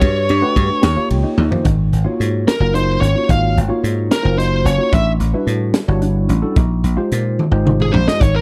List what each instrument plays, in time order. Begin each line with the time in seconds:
Already playing: lead electric guitar C#5
0.00 slap bass G2, clean electric guitar F#4, kick, ride
0.29 slap bass G2, ride
0.42 tine electric piano A3 D4 F#4 G4 B4, clean electric guitar F#4
0.56 slap bass G2, kick, ride
0.82 slap bass D#2, clean electric guitar G4, snare, ride
0.96 tine electric piano A#3 D#4 F4 G4 C#5, muted slap bass stroke
1.10 slap bass C#2, tine electric piano G5, ride
1.24 clean electric guitar D#4
1.37 slap bass D#2, tine electric piano D#5, high tom
1.50 tine electric piano A#3 D#4 F4 G4 C5, floor tom
1.64 slap bass G#1, clean electric guitar D#4, kick, closed hi-hat
1.93 slap bass G#1, closed hi-hat
2.05 tine electric piano A#3 D#4 F4 F#4 C#5, clean electric guitar F4
2.20 slap bass G#2, closed hi-hat
2.48 lead electric guitar A#4, snare, closed hi-hat
2.60 slap bass F#1, tine electric piano A#3 D#4 F4 F#4 A#4
2.74 clean electric guitar D#4, lead electric guitar C5, closed hi-hat
3.00 slap bass G#1, clean electric guitar C#4, lead electric guitar C#5, closed hi-hat
3.15 tine electric piano A#3 D#4 F4 F#4 C#5
3.28 slap bass G#1, clean electric guitar D#4, lead electric guitar F5, kick, closed hi-hat
3.57 slap bass G#1, closed hi-hat
3.69 tine electric piano A#3 D#4 F4 F#4 C#5, clean electric guitar F4
3.84 slap bass G#2, closed hi-hat
4.11 lead electric guitar A#4, snare, closed hi-hat
4.23 slap bass F#1, tine electric piano A#3 D#4 F4 F#4 C5
4.38 clean electric guitar D#4, lead electric guitar C5, closed hi-hat
4.65 slap bass F#1, clean electric guitar C#4, lead electric guitar C#5, closed hi-hat
4.78 tine electric piano A#3 D#4 F4 F#4 C#5
4.92 slap bass A1, clean electric guitar D4, lead electric guitar E5, kick, closed hi-hat
5.20 slap bass A1, closed hi-hat
5.33 tine electric piano G3 D4 E4 F#4 B4, clean electric guitar E4
5.47 slap bass A2, closed hi-hat
5.74 snare, closed hi-hat
5.88 slap bass G1, tine electric piano G3 D4 E4 F#4 C#5
6.02 clean electric guitar D4, closed hi-hat
6.29 slap bass A1, clean electric guitar C#4, closed hi-hat
6.42 tine electric piano G3 D4 E4 F#4 A4
6.56 slap bass A#1, clean electric guitar D#4, kick, closed hi-hat
6.84 slap bass A#1, closed hi-hat
6.97 tine electric piano G#3 D#4 F4 G4 C5, clean electric guitar F4
7.12 slap bass A#2, closed hi-hat
7.39 high tom
7.51 slap bass G#1, tine electric piano G#3 D#4 F4 G4 C5
7.66 clean electric guitar D#4, mid tom
7.80 lead electric guitar G#4, mid tom
7.92 slap bass A#1, clean electric guitar D4, lead electric guitar C5, floor tom
8.07 tine electric piano G#3 D#4 F4 G4 C5, lead electric guitar D#5, snare
8.20 slap bass G#1, clean electric guitar D#4, lead electric guitar C#5, kick, closed hi-hat
8.36 lead electric guitar A#4